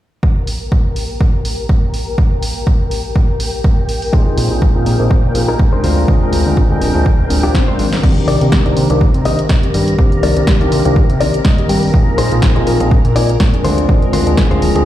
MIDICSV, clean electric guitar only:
0, 0, Header, 1, 3, 480
1, 0, Start_track
1, 0, Key_signature, -3, "minor"
1, 0, Tempo, 487805
1, 226, Time_signature, 4, 2, 24, 8
1, 14612, End_track
2, 0, Start_track
2, 0, Title_t, "Clean electric guitar"
2, 0, Program_c, 0, 27
2, 4061, Note_on_c, 0, 63, 102
2, 4067, Note_on_c, 0, 68, 94
2, 4071, Note_on_c, 0, 72, 100
2, 4438, Note_off_c, 0, 63, 0
2, 4438, Note_off_c, 0, 68, 0
2, 4439, Note_off_c, 0, 72, 0
2, 5397, Note_on_c, 0, 70, 94
2, 5399, Note_on_c, 0, 68, 80
2, 5402, Note_on_c, 0, 63, 74
2, 5505, Note_off_c, 0, 63, 0
2, 5506, Note_off_c, 0, 68, 0
2, 5506, Note_off_c, 0, 70, 0
2, 5635, Note_on_c, 0, 72, 97
2, 5638, Note_on_c, 0, 68, 75
2, 5641, Note_on_c, 0, 63, 69
2, 5734, Note_off_c, 0, 72, 0
2, 5742, Note_off_c, 0, 68, 0
2, 5742, Note_on_c, 0, 72, 98
2, 5744, Note_off_c, 0, 63, 0
2, 5746, Note_on_c, 0, 65, 73
2, 5749, Note_on_c, 0, 62, 74
2, 6517, Note_off_c, 0, 62, 0
2, 6518, Note_off_c, 0, 65, 0
2, 6519, Note_off_c, 0, 72, 0
2, 7314, Note_on_c, 0, 67, 95
2, 7319, Note_on_c, 0, 65, 71
2, 7321, Note_on_c, 0, 62, 77
2, 7424, Note_off_c, 0, 62, 0
2, 7425, Note_off_c, 0, 65, 0
2, 7426, Note_off_c, 0, 67, 0
2, 7558, Note_on_c, 0, 72, 101
2, 7560, Note_on_c, 0, 65, 71
2, 7562, Note_on_c, 0, 62, 74
2, 7732, Note_off_c, 0, 62, 0
2, 7732, Note_off_c, 0, 65, 0
2, 7733, Note_off_c, 0, 72, 0
2, 8145, Note_on_c, 0, 74, 116
2, 8148, Note_on_c, 0, 70, 93
2, 8149, Note_on_c, 0, 63, 80
2, 8331, Note_off_c, 0, 63, 0
2, 8333, Note_off_c, 0, 70, 0
2, 8333, Note_off_c, 0, 74, 0
2, 8519, Note_on_c, 0, 74, 90
2, 8523, Note_on_c, 0, 70, 69
2, 8527, Note_on_c, 0, 63, 67
2, 8626, Note_off_c, 0, 63, 0
2, 8627, Note_off_c, 0, 70, 0
2, 8628, Note_off_c, 0, 74, 0
2, 9106, Note_on_c, 0, 75, 123
2, 9109, Note_on_c, 0, 70, 97
2, 9110, Note_on_c, 0, 63, 103
2, 9238, Note_off_c, 0, 63, 0
2, 9239, Note_off_c, 0, 70, 0
2, 9240, Note_off_c, 0, 75, 0
2, 10067, Note_on_c, 0, 74, 119
2, 10070, Note_on_c, 0, 70, 96
2, 10073, Note_on_c, 0, 63, 98
2, 10253, Note_off_c, 0, 63, 0
2, 10254, Note_off_c, 0, 70, 0
2, 10254, Note_off_c, 0, 74, 0
2, 10440, Note_on_c, 0, 74, 85
2, 10442, Note_on_c, 0, 70, 77
2, 10446, Note_on_c, 0, 63, 76
2, 10547, Note_off_c, 0, 63, 0
2, 10547, Note_off_c, 0, 70, 0
2, 10548, Note_off_c, 0, 74, 0
2, 11025, Note_on_c, 0, 74, 126
2, 11027, Note_off_c, 0, 74, 0
2, 11027, Note_on_c, 0, 74, 71
2, 11032, Note_on_c, 0, 70, 94
2, 11034, Note_on_c, 0, 63, 104
2, 11047, Note_off_c, 0, 74, 0
2, 11159, Note_off_c, 0, 63, 0
2, 11159, Note_off_c, 0, 70, 0
2, 11276, Note_on_c, 0, 75, 64
2, 11490, Note_off_c, 0, 75, 0
2, 11506, Note_on_c, 0, 79, 75
2, 11729, Note_off_c, 0, 79, 0
2, 11985, Note_on_c, 0, 72, 118
2, 11989, Note_on_c, 0, 68, 95
2, 11991, Note_on_c, 0, 63, 104
2, 12172, Note_off_c, 0, 63, 0
2, 12173, Note_off_c, 0, 68, 0
2, 12173, Note_off_c, 0, 72, 0
2, 12357, Note_on_c, 0, 72, 83
2, 12361, Note_on_c, 0, 68, 66
2, 12364, Note_on_c, 0, 63, 68
2, 12466, Note_off_c, 0, 63, 0
2, 12466, Note_off_c, 0, 68, 0
2, 12467, Note_off_c, 0, 72, 0
2, 12947, Note_on_c, 0, 74, 124
2, 12949, Note_on_c, 0, 68, 99
2, 12952, Note_on_c, 0, 63, 104
2, 13079, Note_off_c, 0, 63, 0
2, 13079, Note_off_c, 0, 68, 0
2, 13080, Note_off_c, 0, 74, 0
2, 13426, Note_on_c, 0, 72, 97
2, 13430, Note_on_c, 0, 65, 77
2, 13431, Note_on_c, 0, 62, 76
2, 13821, Note_off_c, 0, 62, 0
2, 13821, Note_off_c, 0, 65, 0
2, 13822, Note_off_c, 0, 72, 0
2, 13905, Note_on_c, 0, 72, 126
2, 13908, Note_on_c, 0, 65, 90
2, 13911, Note_on_c, 0, 62, 100
2, 14092, Note_off_c, 0, 62, 0
2, 14092, Note_off_c, 0, 65, 0
2, 14093, Note_off_c, 0, 72, 0
2, 14278, Note_on_c, 0, 72, 92
2, 14281, Note_on_c, 0, 65, 77
2, 14284, Note_on_c, 0, 62, 74
2, 14386, Note_off_c, 0, 62, 0
2, 14386, Note_off_c, 0, 65, 0
2, 14387, Note_off_c, 0, 72, 0
2, 14612, End_track
3, 0, Start_track
3, 0, Title_t, "Muted clean electric guitar strokes"
3, 4783, Note_on_c, 9, 29, 29
3, 4881, Note_off_c, 9, 29, 0
3, 5022, Note_on_c, 9, 29, 77
3, 5121, Note_off_c, 9, 29, 0
3, 5153, Note_on_c, 9, 29, 34
3, 5251, Note_off_c, 9, 29, 0
3, 5262, Note_on_c, 9, 29, 31
3, 5361, Note_off_c, 9, 29, 0
3, 6703, Note_on_c, 9, 29, 30
3, 6802, Note_off_c, 9, 29, 0
3, 6942, Note_on_c, 9, 29, 84
3, 7040, Note_off_c, 9, 29, 0
3, 7075, Note_on_c, 9, 29, 33
3, 7173, Note_off_c, 9, 29, 0
3, 7181, Note_on_c, 9, 29, 32
3, 7279, Note_off_c, 9, 29, 0
3, 8757, Note_on_c, 9, 29, 84
3, 8856, Note_off_c, 9, 29, 0
3, 8865, Note_on_c, 9, 29, 30
3, 8963, Note_off_c, 9, 29, 0
3, 9343, Note_on_c, 9, 29, 31
3, 9441, Note_off_c, 9, 29, 0
3, 10679, Note_on_c, 9, 29, 79
3, 10777, Note_off_c, 9, 29, 0
3, 10786, Note_on_c, 9, 29, 31
3, 10884, Note_off_c, 9, 29, 0
3, 11263, Note_on_c, 9, 29, 33
3, 11361, Note_off_c, 9, 29, 0
3, 12597, Note_on_c, 9, 29, 84
3, 12695, Note_off_c, 9, 29, 0
3, 12704, Note_on_c, 9, 29, 32
3, 12803, Note_off_c, 9, 29, 0
3, 14517, Note_on_c, 9, 29, 79
3, 14612, Note_off_c, 9, 29, 0
3, 14612, End_track
0, 0, End_of_file